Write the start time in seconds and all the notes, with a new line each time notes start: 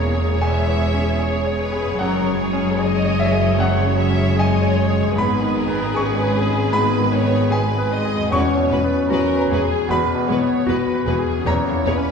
Already playing: E1 E2 E3 G#3 A#3 C#4 G#4 C#5 G#5 A#5
0.14 G#4
0.41 E2 G#3 E5 G#5
0.67 E3
0.94 C#4
1.19 G#4 C#5
1.46 C#5
1.61 B4
1.72 G#4
1.83 F#2
1.88 G#3
1.92 C#4
1.97 F#2 F#3 G#3 G#4 F#5
2.01 F#1 F#2 A#4
2.26 C#3
2.41 G#4
2.53 C#4
2.79 G#4 D#5
3.05 C#5
3.20 E3 E5
3.32 G#4
3.59 F#2 F#3 C#5 F#5
3.85 C#3
3.99 E5
4.10 C#4
4.36 G#3 G#4 D#5 G#5
4.64 C#5
4.78 C#5
4.90 G#4
4.99 G#2
5.03 G#3
5.08 B3
5.12 G#2 G#4
5.17 G#1 G#2 B3 G#4 B4 B5
5.42 D#3
5.57 A#4
5.68 B3
5.93 C#4 G#4 C#6
6.20 B4
6.47 G#4
6.71 G#2 B3 B4 B5
6.99 D#3
7.11 C#5
7.25 B3
7.50 G#3 G#4 B4 G#5
7.78 B4
7.92 D#5
8.05 G#4
8.15 E2
8.20 F#3
8.24 B3
8.29 E1 E2 G#3 C#4 F#4 G#4 B4 C#6
8.33 E2 C#5
8.57 B2
8.71 E1 E2 G#3 F#4 B4
8.84 B3
9.10 E1 E2 G#3 F#4 A#4 B4
9.36 B4
9.49 E1 E2 G#3 F#4 G#4 B4
9.62 G#4
9.88 E1 E2 G#3 B3 F#4 B4 B5
10.15 B2
10.27 E1 E2 G#3 F#4 C#5
10.32 B4
10.40 B3
10.67 E1 E2 G#3 F#4 B4
10.93 B4
11.06 E1 E2 G#3 F#4 G#4 B4
11.19 G#4
11.29 E2
11.33 G#3
11.37 C#4
11.42 E1 E2 G#4 C#5
11.46 E2 A#2 G#3 G#4 A#5
11.71 E3
11.85 E1 E2 G#3 G#4 B4 C#5
11.97 C#4